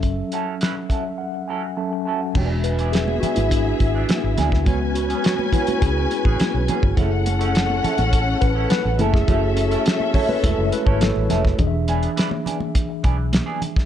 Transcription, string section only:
X:1
M:4/4
L:1/8
Q:1/4=104
K:F#m
V:1 name="String section"
z8 | [B,Ge]8 | [CBg]8 | [CAf]6- [CAf] [CAe]- |
[CAe]8 | z8 |]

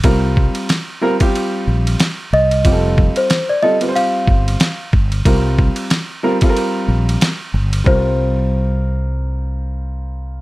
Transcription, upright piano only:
X:1
M:4/4
L:1/16
Q:"Swing 16ths" 1/4=92
K:Cdor
V:1 name="Upright piano"
[G,CFB]4 z2 [G,CFB] [G,CFG]4- [G,CFG] z4 | [G,CFGA]4 z2 [G,CFA] [G,CF=Bc]4- [G,CFBc] z4 | [G,CFB]4 z2 [G,CFB] [G,CFAB]4- [G,CFAB] z4 | [G,CFB]16 |]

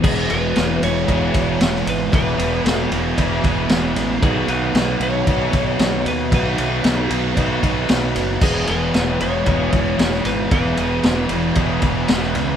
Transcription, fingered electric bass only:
X:1
M:4/4
L:1/8
Q:1/4=114
K:E
V:1 name="Fingered electric bass" clef=bass
E,,, E,,, E,,, E,,, E,,, E,,, E,,, G,,, | E,,, E,,, E,,, E,,, E,,, E,,, E,,, A,,, | B,,, B,,, B,,, B,,, B,,, B,,, B,,, D,, | B,,, B,,, B,,, B,,, B,,, B,,, B,,, F,,, |
E,,, E,,, E,,, E,,, E,,, E,,, E,,, G,,, | E,,, E,,, E,,, E,,, E,,, E,,, E,,, C,, |]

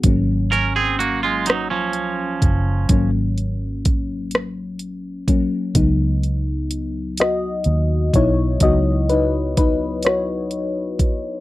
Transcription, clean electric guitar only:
X:1
M:6/8
L:1/16
Q:3/8=42
K:G#phr
V:1 name="Clean electric guitar"
z2 [C^A] [^B,G] [^A,F] [G,^E] [F,D] [^E,C]4- [E,C]- | [^E,C] z8 z3 | z12 | z12 |]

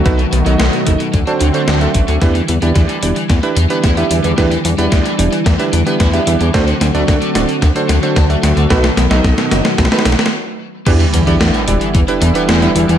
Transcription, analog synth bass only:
X:1
M:4/4
L:1/16
Q:1/4=111
K:Em
V:1 name="Analog synth bass" clef=bass
B,,, z B,,, B,,, B,,, z F,,, z D,, z D,, z D,, z A,,, D,, | E,, z E,, E,, E,, z E,,, z E,, z E,, z E,, z E,, E,, | E,, z E,, E,, E,, z E,,, z E,, z E,, z E,, z E,, E,, | D,, z D,, D,, D,, z D,,, z D,, z D,, z D,, z D,, D,, |
B,,, z B,,, B,,, B,,, z F,,, z B,,, z B,,, z4 z | E,, z E,, E,, E,, z E,,, z E,, z E,, z E,, z E,, E,, |]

